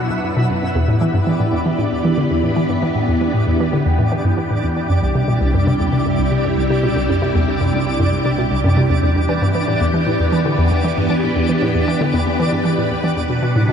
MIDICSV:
0, 0, Header, 1, 4, 480
1, 0, Start_track
1, 0, Key_signature, 1, "minor"
1, 0, Tempo, 517241
1, 702, Time_signature, 4, 2, 24, 8
1, 12740, End_track
2, 0, Start_track
2, 0, Title_t, "Synth texture"
2, 0, Program_c, 0, 99
2, 0, Note_on_c, 0, 64, 79
2, 0, Note_on_c, 0, 76, 79
2, 702, Note_on_c, 0, 62, 81
2, 702, Note_on_c, 0, 74, 83
2, 712, Note_off_c, 0, 76, 0
2, 713, Note_off_c, 0, 64, 0
2, 12740, Note_off_c, 0, 62, 0
2, 12740, Note_off_c, 0, 74, 0
2, 12740, End_track
3, 0, Start_track
3, 0, Title_t, "String machine"
3, 0, Program_c, 1, 50
3, 0, Note_on_c, 1, 47, 80
3, 0, Note_on_c, 1, 54, 75
3, 0, Note_on_c, 1, 62, 75
3, 0, Note_on_c, 1, 71, 88
3, 0, Note_on_c, 1, 78, 88
3, 664, Note_off_c, 1, 47, 0
3, 664, Note_off_c, 1, 54, 0
3, 664, Note_off_c, 1, 62, 0
3, 664, Note_off_c, 1, 78, 0
3, 665, Note_off_c, 1, 71, 0
3, 697, Note_on_c, 1, 40, 79
3, 697, Note_on_c, 1, 52, 71
3, 697, Note_on_c, 1, 67, 75
3, 697, Note_on_c, 1, 71, 90
3, 699, Note_on_c, 1, 59, 71
3, 4503, Note_off_c, 1, 40, 0
3, 4503, Note_off_c, 1, 52, 0
3, 4503, Note_off_c, 1, 59, 0
3, 4503, Note_off_c, 1, 71, 0
3, 4540, Note_on_c, 1, 48, 74
3, 4540, Note_on_c, 1, 64, 73
3, 4541, Note_on_c, 1, 36, 81
3, 4541, Note_on_c, 1, 55, 70
3, 8344, Note_off_c, 1, 48, 0
3, 8344, Note_off_c, 1, 64, 0
3, 8345, Note_off_c, 1, 36, 0
3, 8345, Note_off_c, 1, 55, 0
3, 8381, Note_on_c, 1, 59, 73
3, 8382, Note_on_c, 1, 52, 75
3, 8382, Note_on_c, 1, 71, 87
3, 8383, Note_on_c, 1, 40, 78
3, 12183, Note_off_c, 1, 67, 0
3, 12185, Note_off_c, 1, 52, 0
3, 12185, Note_off_c, 1, 59, 0
3, 12186, Note_off_c, 1, 40, 0
3, 12219, Note_on_c, 1, 78, 90
3, 12220, Note_on_c, 1, 47, 81
3, 12221, Note_on_c, 1, 54, 75
3, 12221, Note_on_c, 1, 62, 73
3, 12740, Note_off_c, 1, 47, 0
3, 12740, Note_off_c, 1, 54, 0
3, 12740, Note_off_c, 1, 62, 0
3, 12740, Note_off_c, 1, 71, 0
3, 12740, Note_off_c, 1, 78, 0
3, 12740, End_track
4, 0, Start_track
4, 0, Title_t, "Synth arpeggio sound"
4, 0, Program_c, 2, 84
4, 98, Note_on_c, 2, 47, 73
4, 144, Note_off_c, 2, 47, 0
4, 221, Note_on_c, 2, 42, 75
4, 294, Note_off_c, 2, 42, 0
4, 341, Note_on_c, 2, 47, 101
4, 414, Note_off_c, 2, 47, 0
4, 461, Note_on_c, 2, 42, 72
4, 534, Note_off_c, 2, 42, 0
4, 580, Note_on_c, 2, 42, 73
4, 653, Note_off_c, 2, 42, 0
4, 700, Note_on_c, 2, 40, 98
4, 809, Note_off_c, 2, 40, 0
4, 819, Note_on_c, 2, 45, 95
4, 929, Note_off_c, 2, 45, 0
4, 940, Note_on_c, 2, 52, 98
4, 984, Note_off_c, 2, 52, 0
4, 1059, Note_on_c, 2, 43, 97
4, 1104, Note_off_c, 2, 43, 0
4, 1178, Note_on_c, 2, 52, 80
4, 1253, Note_off_c, 2, 52, 0
4, 1299, Note_on_c, 2, 45, 73
4, 1373, Note_off_c, 2, 45, 0
4, 1417, Note_on_c, 2, 40, 74
4, 1463, Note_off_c, 2, 40, 0
4, 1539, Note_on_c, 2, 52, 74
4, 1613, Note_off_c, 2, 52, 0
4, 1658, Note_on_c, 2, 45, 97
4, 1732, Note_off_c, 2, 45, 0
4, 1779, Note_on_c, 2, 40, 73
4, 1853, Note_off_c, 2, 40, 0
4, 1901, Note_on_c, 2, 52, 95
4, 1974, Note_off_c, 2, 52, 0
4, 2020, Note_on_c, 2, 50, 95
4, 2129, Note_off_c, 2, 50, 0
4, 2142, Note_on_c, 2, 40, 94
4, 2250, Note_off_c, 2, 40, 0
4, 2259, Note_on_c, 2, 45, 96
4, 2369, Note_off_c, 2, 45, 0
4, 2380, Note_on_c, 2, 52, 98
4, 2425, Note_off_c, 2, 52, 0
4, 2500, Note_on_c, 2, 43, 100
4, 2544, Note_off_c, 2, 43, 0
4, 2622, Note_on_c, 2, 52, 81
4, 2694, Note_off_c, 2, 52, 0
4, 2741, Note_on_c, 2, 45, 72
4, 2814, Note_off_c, 2, 45, 0
4, 2861, Note_on_c, 2, 40, 75
4, 2905, Note_off_c, 2, 40, 0
4, 2982, Note_on_c, 2, 52, 73
4, 3054, Note_off_c, 2, 52, 0
4, 3102, Note_on_c, 2, 45, 95
4, 3175, Note_off_c, 2, 45, 0
4, 3221, Note_on_c, 2, 40, 74
4, 3294, Note_off_c, 2, 40, 0
4, 3343, Note_on_c, 2, 52, 92
4, 3415, Note_off_c, 2, 52, 0
4, 3461, Note_on_c, 2, 50, 96
4, 3570, Note_off_c, 2, 50, 0
4, 3581, Note_on_c, 2, 40, 98
4, 3690, Note_off_c, 2, 40, 0
4, 3701, Note_on_c, 2, 45, 91
4, 3810, Note_off_c, 2, 45, 0
4, 3820, Note_on_c, 2, 52, 96
4, 3865, Note_off_c, 2, 52, 0
4, 3941, Note_on_c, 2, 43, 96
4, 3985, Note_off_c, 2, 43, 0
4, 4059, Note_on_c, 2, 52, 77
4, 4133, Note_off_c, 2, 52, 0
4, 4182, Note_on_c, 2, 45, 77
4, 4255, Note_off_c, 2, 45, 0
4, 4302, Note_on_c, 2, 40, 73
4, 4346, Note_off_c, 2, 40, 0
4, 4422, Note_on_c, 2, 52, 74
4, 4494, Note_off_c, 2, 52, 0
4, 4543, Note_on_c, 2, 42, 93
4, 4615, Note_off_c, 2, 42, 0
4, 4662, Note_on_c, 2, 36, 71
4, 4734, Note_off_c, 2, 36, 0
4, 4781, Note_on_c, 2, 48, 95
4, 4854, Note_off_c, 2, 48, 0
4, 4900, Note_on_c, 2, 47, 98
4, 5009, Note_off_c, 2, 47, 0
4, 5021, Note_on_c, 2, 36, 96
4, 5130, Note_off_c, 2, 36, 0
4, 5142, Note_on_c, 2, 42, 101
4, 5250, Note_off_c, 2, 42, 0
4, 5263, Note_on_c, 2, 48, 90
4, 5306, Note_off_c, 2, 48, 0
4, 5383, Note_on_c, 2, 40, 93
4, 5426, Note_off_c, 2, 40, 0
4, 5501, Note_on_c, 2, 48, 80
4, 5574, Note_off_c, 2, 48, 0
4, 5621, Note_on_c, 2, 42, 70
4, 5694, Note_off_c, 2, 42, 0
4, 5744, Note_on_c, 2, 36, 73
4, 5787, Note_off_c, 2, 36, 0
4, 5861, Note_on_c, 2, 48, 74
4, 5934, Note_off_c, 2, 48, 0
4, 5982, Note_on_c, 2, 42, 94
4, 6054, Note_off_c, 2, 42, 0
4, 6101, Note_on_c, 2, 36, 74
4, 6174, Note_off_c, 2, 36, 0
4, 6222, Note_on_c, 2, 48, 95
4, 6294, Note_off_c, 2, 48, 0
4, 6341, Note_on_c, 2, 47, 99
4, 6450, Note_off_c, 2, 47, 0
4, 6461, Note_on_c, 2, 36, 100
4, 6570, Note_off_c, 2, 36, 0
4, 6581, Note_on_c, 2, 42, 93
4, 6690, Note_off_c, 2, 42, 0
4, 6700, Note_on_c, 2, 48, 97
4, 6745, Note_off_c, 2, 48, 0
4, 6821, Note_on_c, 2, 40, 97
4, 6865, Note_off_c, 2, 40, 0
4, 6942, Note_on_c, 2, 48, 77
4, 7014, Note_off_c, 2, 48, 0
4, 7061, Note_on_c, 2, 42, 75
4, 7134, Note_off_c, 2, 42, 0
4, 7182, Note_on_c, 2, 36, 68
4, 7225, Note_off_c, 2, 36, 0
4, 7301, Note_on_c, 2, 48, 69
4, 7374, Note_off_c, 2, 48, 0
4, 7421, Note_on_c, 2, 42, 98
4, 7494, Note_off_c, 2, 42, 0
4, 7542, Note_on_c, 2, 36, 71
4, 7614, Note_off_c, 2, 36, 0
4, 7662, Note_on_c, 2, 48, 92
4, 7734, Note_off_c, 2, 48, 0
4, 7781, Note_on_c, 2, 47, 93
4, 7890, Note_off_c, 2, 47, 0
4, 7902, Note_on_c, 2, 36, 97
4, 8011, Note_off_c, 2, 36, 0
4, 8020, Note_on_c, 2, 42, 102
4, 8130, Note_off_c, 2, 42, 0
4, 8140, Note_on_c, 2, 48, 96
4, 8184, Note_off_c, 2, 48, 0
4, 8260, Note_on_c, 2, 40, 97
4, 8305, Note_off_c, 2, 40, 0
4, 8381, Note_on_c, 2, 40, 97
4, 8490, Note_off_c, 2, 40, 0
4, 8502, Note_on_c, 2, 40, 71
4, 8610, Note_off_c, 2, 40, 0
4, 8620, Note_on_c, 2, 52, 96
4, 8664, Note_off_c, 2, 52, 0
4, 8741, Note_on_c, 2, 43, 99
4, 8785, Note_off_c, 2, 43, 0
4, 8861, Note_on_c, 2, 52, 80
4, 8934, Note_off_c, 2, 52, 0
4, 8982, Note_on_c, 2, 45, 78
4, 9054, Note_off_c, 2, 45, 0
4, 9102, Note_on_c, 2, 40, 75
4, 9145, Note_off_c, 2, 40, 0
4, 9222, Note_on_c, 2, 52, 72
4, 9294, Note_off_c, 2, 52, 0
4, 9341, Note_on_c, 2, 45, 98
4, 9414, Note_off_c, 2, 45, 0
4, 9463, Note_on_c, 2, 40, 74
4, 9535, Note_off_c, 2, 40, 0
4, 9581, Note_on_c, 2, 52, 98
4, 9654, Note_off_c, 2, 52, 0
4, 9702, Note_on_c, 2, 50, 97
4, 9811, Note_off_c, 2, 50, 0
4, 9822, Note_on_c, 2, 40, 100
4, 9931, Note_off_c, 2, 40, 0
4, 9943, Note_on_c, 2, 40, 78
4, 10051, Note_off_c, 2, 40, 0
4, 10063, Note_on_c, 2, 52, 91
4, 10106, Note_off_c, 2, 52, 0
4, 10183, Note_on_c, 2, 43, 102
4, 10226, Note_off_c, 2, 43, 0
4, 10301, Note_on_c, 2, 52, 77
4, 10374, Note_off_c, 2, 52, 0
4, 10422, Note_on_c, 2, 45, 69
4, 10494, Note_off_c, 2, 45, 0
4, 10541, Note_on_c, 2, 40, 72
4, 10585, Note_off_c, 2, 40, 0
4, 10663, Note_on_c, 2, 52, 76
4, 10735, Note_off_c, 2, 52, 0
4, 10781, Note_on_c, 2, 45, 95
4, 10854, Note_off_c, 2, 45, 0
4, 10902, Note_on_c, 2, 40, 75
4, 10974, Note_off_c, 2, 40, 0
4, 11023, Note_on_c, 2, 52, 94
4, 11095, Note_off_c, 2, 52, 0
4, 11144, Note_on_c, 2, 50, 95
4, 11251, Note_off_c, 2, 50, 0
4, 11263, Note_on_c, 2, 40, 99
4, 11371, Note_off_c, 2, 40, 0
4, 11383, Note_on_c, 2, 40, 74
4, 11491, Note_off_c, 2, 40, 0
4, 11504, Note_on_c, 2, 52, 92
4, 11546, Note_off_c, 2, 52, 0
4, 11622, Note_on_c, 2, 43, 98
4, 11666, Note_off_c, 2, 43, 0
4, 11742, Note_on_c, 2, 52, 81
4, 11814, Note_off_c, 2, 52, 0
4, 11863, Note_on_c, 2, 45, 72
4, 11935, Note_off_c, 2, 45, 0
4, 11980, Note_on_c, 2, 40, 73
4, 12025, Note_off_c, 2, 40, 0
4, 12101, Note_on_c, 2, 52, 78
4, 12174, Note_off_c, 2, 52, 0
4, 12219, Note_on_c, 2, 40, 99
4, 12293, Note_off_c, 2, 40, 0
4, 12340, Note_on_c, 2, 47, 72
4, 12414, Note_off_c, 2, 47, 0
4, 12461, Note_on_c, 2, 47, 97
4, 12534, Note_off_c, 2, 47, 0
4, 12582, Note_on_c, 2, 45, 102
4, 12691, Note_off_c, 2, 45, 0
4, 12704, Note_on_c, 2, 47, 99
4, 12740, Note_off_c, 2, 47, 0
4, 12740, End_track
0, 0, End_of_file